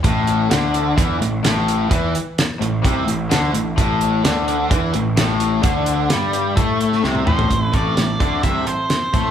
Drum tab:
HH |x-x-x-x-x-x-x-x-|x-x-x-x-x-x-x-x-|x-x-x-x-x-x-x-x-|x-x-x-x-x-x-----|
SD |----o-------o---|----o-------o---|----o-------o---|----o------oo---|
T1 |----------------|----------------|----------------|-------------o--|
T2 |----------------|----------------|----------------|--------------o-|
FT |----------------|----------------|----------------|---------------o|
BD |o-------o-------|o-------o-------|o-------o-------|o-------o-------|

HH |x-x-x-x-x-x-x-x-|
SD |----o-------o---|
T1 |----------------|
T2 |----------------|
FT |----------------|
BD |o-o---o-o-----o-|